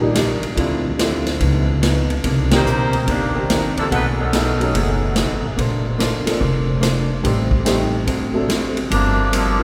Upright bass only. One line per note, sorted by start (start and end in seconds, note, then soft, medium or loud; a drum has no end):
0.00 0.39 A#1 medium
0.42 muted upright bass stroke soft
0.57 1.36 D2 medium
1.41 2.20 C#2 medium
2.24 2.63 C2 medium
2.65 3.04 B1 medium
3.08 3.72 G1 medium
3.76 muted upright bass stroke soft
3.91 4.70 B1 medium
4.74 5.26 F#1 medium
5.30 5.43 G#1 medium
5.43 5.56 A1 medium
5.58 6.22 A#1 medium
6.26 muted upright bass stroke soft
6.41 7.20 F1 medium
7.24 8.03 A1 medium
8.91 9.63 G1 medium